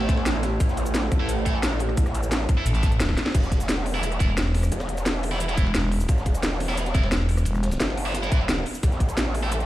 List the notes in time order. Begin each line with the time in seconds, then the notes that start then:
Already playing: A1 A3 E4 C5
0.00 A3 E4 A4, snare, ride
0.09 kick, snare, closed hi-hat, ride
0.17 snare, ride
0.26 snare, closed hi-hat, ride, cabasa
0.35 ride
0.43 snare, closed hi-hat, ride
0.51 snare
0.60 A1, kick, closed hi-hat, ride, cabasa
0.69 snare, cabasa
0.77 closed hi-hat, ride, cabasa
0.85 ride, cabasa
0.95 snare, closed hi-hat, ride, cabasa
1.03 snare
1.11 A1, kick, cross-stick, closed hi-hat, ride, cabasa
1.20 A3 E4 A4
1.29 closed hi-hat, ride, cabasa
1.46 A3 E4 A4, kick, closed hi-hat, ride
1.63 snare, closed hi-hat, ride, cabasa
1.72 snare
1.79 closed hi-hat, ride
1.89 cross-stick, ride
1.97 A1, kick, closed hi-hat, ride, cabasa
2.05 cross-stick, snare, cabasa
2.15 closed hi-hat, ride, cabasa
2.23 cabasa
2.31 snare, closed hi-hat, ride, cabasa
2.41 snare
2.49 kick, closed hi-hat, ride, cabasa
2.57 A3 E4 A4
2.66 A1, closed hi-hat, ride, cabasa
2.74 A3 E4 A4, closed hi-hat
2.83 kick, snare, closed hi-hat, ride, cabasa
2.92 closed hi-hat, ride
3.00 snare, closed hi-hat, ride, cabasa
3.09 kick, snare, ride
3.17 snare, closed hi-hat, ride
3.26 snare, ride
3.35 E1, kick, closed hi-hat, ride, crash, cabasa
3.43 snare, cabasa
3.51 kick, closed hi-hat, ride
3.60 ride, cabasa
3.68 snare, closed hi-hat, ride, cabasa
3.78 snare
3.85 open hi-hat, ride
3.94 E3 B3 E4
4.03 closed hi-hat, ride, cabasa
4.12 cross-stick, closed hi-hat
4.20 E1 E3 B3 E4, kick, closed hi-hat, ride, cabasa
4.37 snare, closed hi-hat, ride, cabasa
4.46 cross-stick, snare
4.54 snare, open hi-hat, ride
4.63 cross-stick, snare, cabasa
4.72 E1, closed hi-hat, ride, cabasa
4.80 cross-stick, snare, ride, cabasa
4.89 snare, closed hi-hat
4.97 ride, cabasa
5.06 snare, closed hi-hat, ride, cabasa
5.14 snare
5.23 open hi-hat, ride
5.31 E3 B3 E4, snare
5.40 closed hi-hat, ride, cabasa
5.49 E3 B3 E4, closed hi-hat, ride
5.56 E1 E3 B3 E4, kick, snare, closed hi-hat, cabasa
5.67 ride
5.75 E1, snare, closed hi-hat, ride, cabasa
5.91 open hi-hat, ride
6.00 cabasa
6.08 E1, kick, closed hi-hat, ride, cabasa
6.17 snare, cabasa
6.26 kick, closed hi-hat, ride
6.34 ride, cabasa
6.43 snare, closed hi-hat, ride, cabasa
6.51 snare
6.60 snare, open hi-hat, ride
6.68 E3 B3 E4, snare, ride
6.77 snare, closed hi-hat, ride, cabasa
6.86 cross-stick, snare, closed hi-hat, ride
6.94 E1 E3 B3 E4, kick, snare, closed hi-hat, ride, cabasa
7.03 snare, ride
7.11 snare, closed hi-hat, ride, cabasa
7.20 cross-stick, snare
7.29 open hi-hat, ride
7.37 cross-stick, ride, cabasa
7.45 E1, closed hi-hat, ride, cabasa
7.54 cross-stick, snare, cabasa
7.63 snare, closed hi-hat, ride
7.71 snare, ride, cabasa
7.80 G1, snare, closed hi-hat, ride, cabasa
7.89 snare, ride
7.97 open hi-hat, ride
8.06 E3 B3 E4
8.14 snare, closed hi-hat, ride, cabasa
8.22 E3 B3 E4, snare, closed hi-hat, ride
8.31 E3 B3 E4, kick, snare, closed hi-hat, ride, cabasa
8.41 ride
8.49 snare, closed hi-hat, ride, cabasa
8.57 ride
8.66 open hi-hat, ride
8.75 cabasa
8.83 A1, kick, closed hi-hat, ride, cabasa
8.92 snare, cabasa
9.00 kick, closed hi-hat, ride
9.09 ride, cabasa
9.17 snare, closed hi-hat, ride, cabasa
9.27 snare
9.34 open hi-hat, ride
9.43 A3 E4 A4
9.52 closed hi-hat, ride, cabasa
9.60 cross-stick, closed hi-hat